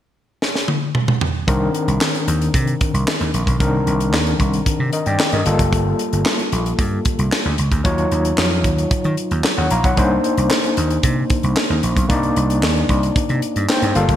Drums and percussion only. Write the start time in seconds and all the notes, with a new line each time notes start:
0.42 snare
0.55 snare
0.68 high tom
0.95 mid tom
1.08 mid tom
1.21 floor tom
1.48 kick, closed hi-hat
1.75 closed hi-hat
1.88 closed hi-hat
2.01 snare, clap
2.14 closed hi-hat
2.28 closed hi-hat
2.42 closed hi-hat
2.54 kick, closed hi-hat
2.67 closed hi-hat
2.81 kick, closed hi-hat
2.95 closed hi-hat
3.08 snare, clap
3.21 closed hi-hat
3.34 closed hi-hat
3.47 kick, closed hi-hat
3.60 kick, closed hi-hat
3.87 closed hi-hat
4.00 closed hi-hat
4.14 snare, clap
4.27 closed hi-hat
4.40 kick, closed hi-hat
4.53 closed hi-hat
4.66 kick, closed hi-hat
4.93 closed hi-hat
5.06 closed hi-hat
5.20 snare, clap
5.32 closed hi-hat
5.46 closed hi-hat
5.59 kick, closed hi-hat
5.73 kick, closed hi-hat
5.99 closed hi-hat
6.13 closed hi-hat
6.26 snare, clap
6.39 closed hi-hat
6.52 closed hi-hat
6.66 closed hi-hat
6.79 kick, closed hi-hat
7.05 kick, closed hi-hat
7.19 closed hi-hat
7.32 snare, clap
7.58 closed hi-hat
7.72 kick, closed hi-hat
7.85 kick, closed hi-hat
7.98 closed hi-hat
8.11 closed hi-hat
8.25 closed hi-hat
8.38 snare, clap
8.64 kick, closed hi-hat
8.78 closed hi-hat
8.91 kick, closed hi-hat
9.04 closed hi-hat
9.17 closed hi-hat
9.31 closed hi-hat
9.44 snare, clap
9.70 closed hi-hat
9.84 kick, closed hi-hat
9.97 kick, closed hi-hat
10.24 closed hi-hat
10.38 closed hi-hat
10.51 snare, clap
10.64 closed hi-hat
10.77 closed hi-hat
10.90 closed hi-hat
11.03 kick, closed hi-hat
11.30 kick, closed hi-hat
11.43 closed hi-hat
11.57 snare, clap
11.83 closed hi-hat
11.97 kick, closed hi-hat
12.10 kick, closed hi-hat
12.23 closed hi-hat
12.36 closed hi-hat
12.50 closed hi-hat
12.63 snare, clap
12.76 closed hi-hat
12.89 kick, closed hi-hat
13.03 closed hi-hat
13.16 kick, closed hi-hat
13.29 closed hi-hat
13.42 closed hi-hat
13.56 closed hi-hat
13.70 snare, clap
13.82 closed hi-hat
13.95 closed hi-hat
14.09 kick, closed hi-hat